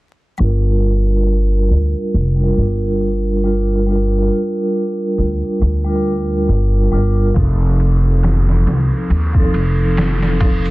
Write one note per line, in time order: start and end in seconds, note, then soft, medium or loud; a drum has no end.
0.38 1.67 G1 medium
0.38 2.31 G3 medium
0.38 2.32 D4 medium
0.38 2.33 F4 medium
0.38 shaker soft
0.43 2.34 A#4 medium
0.63 shaker soft
1.07 shaker medium
1.26 shaker medium
1.52 shaker soft
1.70 1.92 D2 medium
1.94 shaker medium
2.13 2.53 F1 medium
2.13 shaker medium
2.36 3.39 G3 medium
2.36 3.40 D4 medium
2.36 3.40 F4 medium
2.36 shaker soft
2.41 3.41 A#4 medium
2.57 4.28 G1 medium
2.81 shaker medium
3.00 shaker soft
3.25 shaker soft
3.44 3.77 G3 medium
3.44 3.77 D4 medium
3.44 3.78 F4 medium
3.44 3.78 A#4 medium
3.68 shaker medium
3.87 5.80 G3 medium
3.87 5.81 D4 medium
3.87 5.82 F4 medium
3.87 shaker medium
3.92 5.83 A#4 medium
4.12 shaker soft
4.55 shaker medium
4.74 shaker medium
5.00 shaker soft
5.18 5.40 D2 medium
5.43 shaker medium
5.61 6.45 D2 medium
5.61 shaker medium
5.85 6.87 G3 medium
5.85 6.88 D4 medium
5.85 6.88 F4 medium
5.85 shaker soft
5.89 6.89 A#4 medium
6.31 shaker medium
6.49 6.88 G1 medium
6.49 shaker medium
6.74 shaker soft
6.92 7.31 G1 medium
6.92 7.25 G3 medium
6.92 7.25 D4 medium
6.92 7.25 F4 medium
6.92 7.26 A#4 medium
7.17 shaker medium
7.34 8.63 F1 medium
7.34 9.28 F3 medium
7.34 9.28 C4 medium
7.34 9.29 D#4 medium
7.34 kick medium
7.34 ride medium
7.34 shaker medium
7.39 9.30 A4 medium
7.60 shaker soft
7.80 ride medium
8.04 shaker medium
8.23 snare loud
8.23 ride medium
8.23 shaker medium
8.49 snare soft
8.49 shaker soft
8.66 8.88 C2 medium
8.66 snare soft
8.66 ride medium
8.92 shaker medium
9.10 9.49 D#2 medium
9.10 ride medium
9.10 shaker medium
9.33 10.35 F3 medium
9.33 10.36 C4 medium
9.33 10.37 D#4 medium
9.33 kick medium
9.33 shaker soft
9.38 10.37 A4 medium
9.54 10.71 F1 medium
9.54 ride medium
9.78 shaker medium
9.97 snare loud
9.97 ride medium
9.97 shaker medium
10.22 snare soft
10.22 shaker soft
10.40 10.71 F3 medium
10.40 10.71 C4 medium
10.40 10.71 D#4 medium
10.40 10.71 A4 medium
10.40 kick medium
10.40 ride medium
10.65 ride soft
10.65 shaker medium